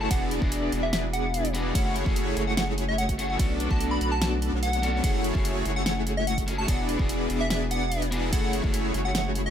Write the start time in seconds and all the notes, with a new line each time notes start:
0.01 A5
0.10 E1 B3 D4 E4 F#4 G#4 D5 F#5, kick, closed hi-hat, ride
0.31 closed hi-hat
0.40 E1 B3 D4 E4 F#4 G#4 D5, kick
0.44 G#4
0.52 closed hi-hat
0.72 E1 B3 D4 E4 G#4 D5, closed hi-hat
0.83 E5
0.93 E5, snare, closed hi-hat
1.13 F#5, closed hi-hat
1.34 closed hi-hat
1.45 closed hi-hat
1.54 B3 D4 F#4 G#4, closed hi-hat
1.74 F#1 A3 C#4 E4 F#4 G#4 C#5 F#5, kick, closed hi-hat, ride
1.86 F#5
1.96 closed hi-hat
2.04 F#1 A3 C#4 E4 F#4 G#4 C#5, kick
2.16 closed hi-hat
2.37 F#1 A3 E4 F#4 G#4 C#5, closed hi-hat
2.47 F#5
2.57 F#5, snare, closed hi-hat
2.78 closed hi-hat
2.88 E5
2.98 F#5, closed hi-hat
3.09 kick, closed hi-hat
3.18 A3 C#4 E4 G#4 F#5, closed hi-hat
3.30 F#5
3.38 B1 A3 B3 C#4 D4 F#4 A4 D5, kick, closed hi-hat, ride
3.60 closed hi-hat
3.69 B1 A3 B3 D4 F#4 A4 D5 A5, kick
3.81 closed hi-hat
3.91 B5
4.01 B1 B3 D4 F#4 A4 D5 B5, closed hi-hat
4.12 A5
4.22 A5, snare, closed hi-hat
4.42 closed hi-hat
4.53 B1 B3 D4 F#4 A4 C#5
4.63 F#5, closed hi-hat
4.73 closed hi-hat
4.82 A3 C#4 D4 F#4, closed hi-hat
5.03 F#1 A3 C#4 E4 F#4 G#4 C#5 F#5, kick, closed hi-hat, ride
5.14 F#5
5.24 closed hi-hat
5.33 F#1 A3 C#4 E4 F#4 G#4 C#5, kick
5.37 G#4
5.45 closed hi-hat
5.65 F#1 A3 E4 F#4 G#4 C#5, closed hi-hat
5.76 F#5
5.86 F#5, snare, closed hi-hat
6.07 closed hi-hat
6.17 E5
6.27 F#5, closed hi-hat
6.38 kick, closed hi-hat
6.47 A3 C#4 E4 G#4, closed hi-hat
6.58 A5
6.67 E1 B3 D4 E4 F#4 G#4 D5 F#5, kick, closed hi-hat, ride
6.89 closed hi-hat
6.97 E1 B3 D4 E4 F#4 G#4 D5, kick
7.01 G#4
7.09 closed hi-hat
7.30 E1 B3 D4 E4 G#4 D5, closed hi-hat
7.41 E5
7.50 E5, snare, closed hi-hat
7.71 F#5, closed hi-hat
7.92 closed hi-hat
8.02 closed hi-hat
8.11 B3 D4 F#4 G#4, closed hi-hat
8.32 F#1 A3 C#4 E4 F#4 G#4 C#5 F#5, kick, closed hi-hat, ride
8.43 F#5
8.53 closed hi-hat
8.62 F#1 A3 C#4 E4 F#4 G#4 C#5, kick
8.66 G#4
8.74 closed hi-hat
8.94 F#1 A3 E4 F#4 G#4 C#5, closed hi-hat
9.05 F#5
9.15 F#5, snare, closed hi-hat
9.35 closed hi-hat
9.46 E5